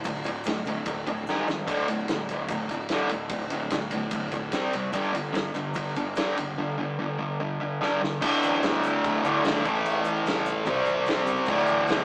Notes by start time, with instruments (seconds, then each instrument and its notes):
0.04 fingered electric bass D1, distorted electric guitar D2 A2, kick, ride, shaker
0.14 shaker
0.24 distorted electric guitar D2 A2, ride, shaker
0.35 shaker
0.44 fingered electric bass D1, distorted electric guitar D2 A2, snare, ride, shaker
0.65 fingered electric bass D1, distorted electric guitar D2 A2, ride, shaker
0.76 shaker
0.86 fingered electric bass D1, distorted electric guitar D2 A2, kick, ride, shaker
1.07 fingered electric bass D1, distorted electric guitar D2 A2, kick, ride, shaker
1.17 shaker
1.26 fingered electric bass G#1, distorted electric guitar G#2 D#3 G#3, snare, shaker
1.47 fingered electric bass G#1, distorted electric guitar G#2 D#3, snare, shaker
1.58 shaker
1.67 fingered electric bass D1, distorted electric guitar D2 A2 D3, kick, ride, shaker
1.79 shaker
1.88 distorted electric guitar D2 A2, ride, shaker
1.99 shaker
2.08 fingered electric bass D1, distorted electric guitar D2 A2, snare, ride, shaker
2.28 fingered electric bass D1, distorted electric guitar D2 A2, ride, shaker
2.48 fingered electric bass D1, distorted electric guitar D2 A2, kick, ride, shaker
2.69 fingered electric bass D1, distorted electric guitar D2 A2, kick, ride, shaker
2.81 shaker
2.89 fingered electric bass D1, distorted electric guitar D2 A2 D3, snare, ride, shaker
3.09 fingered electric bass D1, distorted electric guitar D2 A2, ride, shaker
3.29 fingered electric bass D1, distorted electric guitar D2 A2, kick, ride, shaker
3.41 shaker
3.50 distorted electric guitar D2 A2, ride, shaker
3.61 shaker
3.70 fingered electric bass D1, distorted electric guitar D2 A2, snare, ride, shaker
3.91 fingered electric bass D1, distorted electric guitar D2 A2, ride, shaker
4.11 fingered electric bass D1, distorted electric guitar D2 A2, kick, ride, shaker
4.32 fingered electric bass D1, distorted electric guitar D2 A2, kick, ride, shaker
4.52 fingered electric bass C2, distorted electric guitar C3 G3 C4, snare, ride, shaker
4.73 fingered electric bass F#1, distorted electric guitar C3 G3, ride, shaker
4.93 fingered electric bass G1, distorted electric guitar G2 D3 G3, kick, ride, shaker
5.03 shaker
5.14 distorted electric guitar G2 D3, ride, shaker
5.25 shaker
5.34 fingered electric bass G1, distorted electric guitar G2 D3, snare, ride, shaker
5.54 fingered electric bass G1, distorted electric guitar G2 D3, ride, shaker
5.74 fingered electric bass G1, distorted electric guitar G2 D3, kick, ride, shaker
5.96 fingered electric bass G1, distorted electric guitar G2 D3, kick, ride, shaker
6.15 fingered electric bass G1, distorted electric guitar G2 D3 G3, snare, ride, shaker
6.36 fingered electric bass C#2, distorted electric guitar G2 D3, ride, shaker
6.58 distorted electric guitar G2 D3
6.78 distorted electric guitar G2 D3
6.99 distorted electric guitar G2 D3
7.19 distorted electric guitar G2 D3
7.40 distorted electric guitar G2 D3
7.60 distorted electric guitar G2 D3
7.81 distorted electric guitar G2 D3 G3, snare
8.01 distorted electric guitar G2 D3, snare
8.21 fingered electric bass D1, distorted electric guitar D2 A2 D3, kick, crash, shaker
8.42 fingered electric bass A1, shaker
8.63 fingered electric bass B1, snare, crash, shaker
8.83 fingered electric bass D1, shaker
9.04 fingered electric bass D1, kick, crash, shaker
9.23 fingered electric bass G1, distorted electric guitar D2 A2 D3, shaker
9.44 fingered electric bass G#1, distorted electric guitar D2 A2 D3, snare, crash, shaker
9.65 fingered electric bass A1, distorted electric guitar A2 E3 A3, kick, shaker
9.75 shaker
9.85 fingered electric bass A1, crash, shaker
10.04 fingered electric bass A1, shaker
10.16 shaker
10.25 fingered electric bass C#2, snare, crash, shaker
10.46 shaker
10.65 fingered electric bass C2, distorted electric guitar C3 G3 C4, kick, crash, shaker
10.85 fingered electric bass A1, shaker
11.06 fingered electric bass C2, snare, crash, shaker
11.26 fingered electric bass C#2, shaker
11.36 shaker
11.46 fingered electric bass D1, distorted electric guitar D2 A2, kick, crash, shaker
11.51 distorted electric guitar D3
11.67 fingered electric bass A1, shaker
11.87 fingered electric bass B1, snare, crash, shaker